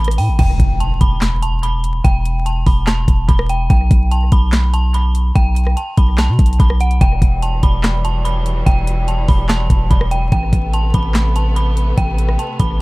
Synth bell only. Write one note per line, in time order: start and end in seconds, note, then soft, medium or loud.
0.00 0.16 B5 medium
0.18 0.37 G5 medium
0.39 0.78 G5 loud
0.80 0.99 A5 medium
1.01 1.40 B5 medium
1.42 1.61 A5 medium
1.63 1.81 B5 medium
2.04 2.43 G5 loud
2.46 2.64 A5 medium
2.66 2.85 B5 medium
2.87 3.26 A5 medium
3.28 3.47 B5 medium
3.50 3.68 G5 medium
3.70 4.09 G5 loud
4.11 4.30 A5 medium
4.32 4.71 B5 medium
4.74 4.92 A5 medium
4.94 5.13 B5 medium
5.35 5.74 G5 loud
5.77 5.95 A5 medium
5.97 6.16 B5 medium
6.19 6.57 A5 medium
6.60 6.78 B5 medium
6.81 6.99 F#5 medium
7.01 7.40 G5 loud
7.42 7.61 A5 medium
7.63 8.02 B5 medium
8.05 8.23 A5 medium
8.25 8.43 B5 medium
8.66 9.05 G5 loud
9.08 9.26 A5 medium
9.28 9.47 B5 medium
9.49 9.88 A5 loud
9.91 10.09 B5 medium
10.11 10.30 G5 medium
10.32 10.71 G5 loud
10.74 10.92 A5 loud
10.94 11.33 B5 medium
11.36 11.54 A5 medium
11.56 11.75 B5 medium
11.98 12.36 G5 loud
12.39 12.57 A5 medium
12.60 12.78 B5 medium